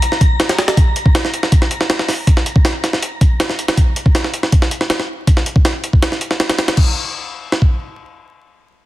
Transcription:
Already playing: A#5 A#6
0.02 closed hi-hat
0.12 snare
0.21 kick, closed hi-hat
0.40 snare, closed hi-hat
0.49 snare, closed hi-hat
0.58 snare, closed hi-hat
0.68 snare, closed hi-hat
0.77 kick, closed hi-hat
0.96 closed hi-hat
1.06 kick
1.15 snare, closed hi-hat
1.25 snare
1.34 closed hi-hat
1.43 snare
1.52 kick, closed hi-hat
1.62 snare
1.71 closed hi-hat
1.81 snare
1.90 snare, closed hi-hat
1.99 snare
2.09 snare, open hi-hat
2.27 kick, closed hi-hat
2.37 snare
2.46 closed hi-hat
2.56 kick
2.65 snare, closed hi-hat
2.84 snare, closed hi-hat
2.93 snare
3.02 closed hi-hat
3.21 kick, closed hi-hat
3.40 snare, closed hi-hat
3.50 snare
3.59 closed hi-hat
3.68 snare, closed hi-hat
3.77 kick, closed hi-hat
3.96 closed hi-hat
4.06 kick
4.15 snare, closed hi-hat
4.24 snare
4.34 closed hi-hat
4.43 snare
4.52 kick, closed hi-hat
4.62 snare
4.71 closed hi-hat
4.81 snare
4.90 snare, closed hi-hat
5.00 snare
5.27 kick, closed hi-hat
5.37 snare
5.46 closed hi-hat
5.56 kick
5.65 snare, closed hi-hat
5.84 closed hi-hat
5.93 kick
6.02 snare, closed hi-hat
6.12 snare
6.21 closed hi-hat
6.31 snare
6.40 snare, closed hi-hat
6.49 snare, closed hi-hat
6.58 snare, closed hi-hat
6.68 snare, closed hi-hat
6.77 kick, crash
7.52 snare
7.62 kick

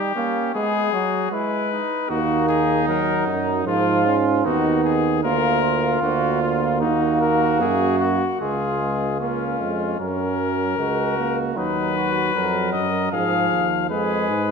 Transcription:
Already playing: G3 D#4 G4
0.15 A#3 C#4
0.55 G#3 B3 G#4
0.93 F#3 F#4
1.31 G#3 E4 B4
1.72 D#4
2.09 D#2 A#3 D#4 F#4
2.49 G#4
2.88 F#3 A#4
3.27 F#2 D#4
3.66 G#2 F3 F4
4.06 C#4
4.44 D#2 B3 D#4 F#4
4.85 G#4
5.23 D2 A#3 F4 A#4
5.62 F4
6.02 D2 A#3 F#4
6.41 F4
6.81 D#2 D#4 F#4
7.21 A#4
7.61 F#2 G#4
7.99 F#4
8.40 C#2 G#3 F4 G#4
8.81 G#3
9.20 A#3 C#4 F4
9.60 F2 G#3
10.00 F#2 F#3 C#4 A#4
10.78 C#2 G#3 F#4
11.19 A#3
11.56 D#2 F#3 D#4 B4
11.98 F#4
12.35 F2 F#3 A#4
12.72 F#2 D#5
13.12 G#2 F3 G#4 F5
13.51 D#2
13.90 F2 G#3 G#4 B4
14.29 G#2

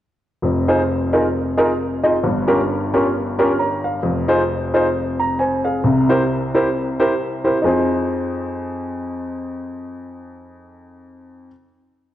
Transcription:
0.42 F1 F2
0.68 D#4 F4 G#4 C5
1.13 D#4 F4 G#4 A#4
1.57 D#4 F4 G#4 A#4
2.03 D#4 F4 G#4 D#5
2.24 G1 G2
2.47 C#4 F4 G4 A#4
2.94 C#4 F4 G4 A#4
3.39 C#4 F4 G4 A#4
3.59 C#5 A#5
3.84 F5
4.03 F1 F2
4.28 D#4 F4 G#4 C5
4.74 D#4 F4 G#4 C5
5.20 A#5
5.39 C5 G#5
5.65 G#4 F5
5.84 C2 C3
6.09 E4 G4 A#4 C5
6.55 E4 G4 A#4 C5
7.00 E4 G4 A#4 C5
7.44 E4 G4 A#4 C5
7.62 F2 D#4 F4 G#4
7.66 C5

